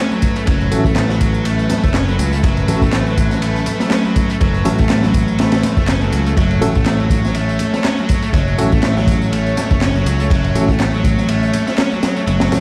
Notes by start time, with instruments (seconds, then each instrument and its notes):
Already playing: string section F#3 A3 C#4 A4 B4, distorted electric guitar C#4
0.11 distorted electric guitar F#3, tambourine, high conga
0.22 kick, ride, tambourine
0.36 distorted electric guitar A3, ride, tambourine
0.47 picked electric bass F#1, distorted electric guitar F#3, kick, ride, tambourine
0.61 tambourine
0.71 picked electric bass A1, tine electric piano A3 C#4 F#4 A4, ride, tambourine, low conga
0.85 distorted electric guitar A3, kick, tambourine, low conga
0.96 snare, clap, ride, tambourine
1.09 distorted electric guitar F#3, snare, tambourine
1.21 kick, ride, tambourine
1.34 tambourine
1.45 distorted electric guitar A3, ride, tambourine
1.59 tambourine
1.70 snare, ride, tambourine, high conga, low conga
1.83 picked electric bass F#1, distorted electric guitar A3, kick, tambourine
1.94 distorted electric guitar C#4, snare, clap, ride, tambourine
2.08 distorted electric guitar F#3, tambourine, high conga
2.19 picked electric bass C#2, ride, tambourine
2.32 distorted electric guitar A3, tambourine
2.43 picked electric bass F#1, distorted electric guitar F#3, kick, ride, tambourine
2.57 ride, tambourine
2.68 picked electric bass A1, tine electric piano A3 C#4 F#4 A4, ride, tambourine, low conga
2.82 distorted electric guitar A3, kick, tambourine, low conga
2.93 snare, clap, ride, tambourine
3.07 distorted electric guitar F#3, tambourine
3.17 kick, ride, tambourine
3.31 snare, tambourine
3.42 distorted electric guitar A3, ride, tambourine
3.56 tambourine
3.66 ride, tambourine, high conga, low conga
3.80 distorted electric guitar A3, snare, tambourine
3.90 distorted electric guitar C#4, snare, clap, ride, tambourine
4.05 distorted electric guitar F#3, tambourine, high conga
4.16 kick, ride, tambourine
4.30 distorted electric guitar A3, ride, tambourine
4.41 picked electric bass F#1, distorted electric guitar F#3, kick, ride, tambourine
4.54 tambourine
4.65 picked electric bass A1, tine electric piano A3 C#4 F#4 A4, ride, tambourine, low conga
4.78 distorted electric guitar A3, kick, tambourine, low conga
4.90 snare, clap, ride, tambourine
5.03 distorted electric guitar F#3, snare, tambourine, high conga
5.14 kick, ride, tambourine
5.28 tambourine
5.39 distorted electric guitar A3, snare, ride, tambourine
5.52 snare, ride, tambourine
5.63 snare, ride, tambourine, high conga, low conga
5.77 picked electric bass F#1, distorted electric guitar A3, kick, tambourine
5.88 distorted electric guitar C#4, snare, clap, ride, tambourine
6.01 distorted electric guitar F#3, tambourine, high conga
6.12 picked electric bass C#2, ride, tambourine
6.26 distorted electric guitar A3, tambourine
6.37 picked electric bass F#1, distorted electric guitar F#3, string section C#5, kick, ride, tambourine
6.51 ride, tambourine
6.61 picked electric bass A1, tine electric piano A3 C#4 F#4 A4, ride, tambourine, low conga
6.75 distorted electric guitar A3, kick, tambourine, low conga
6.86 snare, clap, ride, tambourine
7.00 distorted electric guitar F#3, tambourine
7.10 kick, ride, tambourine
7.25 snare, tambourine
7.34 distorted electric guitar A3, ride, tambourine
7.49 tambourine
7.59 ride, tambourine, high conga, low conga
7.74 distorted electric guitar A3, snare, tambourine
7.84 distorted electric guitar C#4, snare, clap, ride, tambourine
7.98 distorted electric guitar F#3, tambourine, high conga
8.09 kick, ride, tambourine
8.22 distorted electric guitar A3, ride, tambourine
8.33 picked electric bass F#1, distorted electric guitar F#3, kick, ride, tambourine
8.48 tambourine
8.58 picked electric bass A1, tine electric piano A3 C#4 F#4 A4, ride, tambourine, low conga
8.72 distorted electric guitar A3, kick, tambourine, low conga
8.83 snare, clap, ride, tambourine
8.97 distorted electric guitar F#3, snare, tambourine
9.07 kick, ride, tambourine
9.22 tambourine
9.32 distorted electric guitar A3, ride, tambourine
9.46 tambourine
9.56 snare, ride, tambourine, high conga, low conga
9.70 picked electric bass F#1, distorted electric guitar A3, kick, tambourine
9.81 distorted electric guitar C#4, snare, clap, ride, tambourine
9.95 distorted electric guitar F#3, tambourine, high conga
10.05 picked electric bass C#2, ride, tambourine
10.20 distorted electric guitar A3, tambourine
10.30 picked electric bass F#1, distorted electric guitar F#3, kick, ride, tambourine
10.44 ride, tambourine
10.55 picked electric bass A1, tine electric piano A3 C#4 F#4 A4, ride, tambourine, low conga
10.69 distorted electric guitar A3, kick, tambourine, low conga
10.80 snare, clap, ride, tambourine
10.94 distorted electric guitar F#3, tambourine
11.04 kick, ride, tambourine
11.18 snare, tambourine
11.28 distorted electric guitar A3, ride, tambourine
11.43 tambourine
11.53 ride, tambourine, high conga, low conga
11.67 distorted electric guitar A3, snare, tambourine
11.78 distorted electric guitar C#4, snare, clap, ride, tambourine
11.91 distorted electric guitar F#3, tambourine, high conga
12.03 snare, ride, tambourine
12.16 distorted electric guitar A3, tambourine
12.27 picked electric bass F#1, distorted electric guitar F#3, ride, tambourine
12.40 snare, ride, tambourine
12.52 picked electric bass A1, tine electric piano A3 C#4 F#4 A4, snare, ride, tambourine, low conga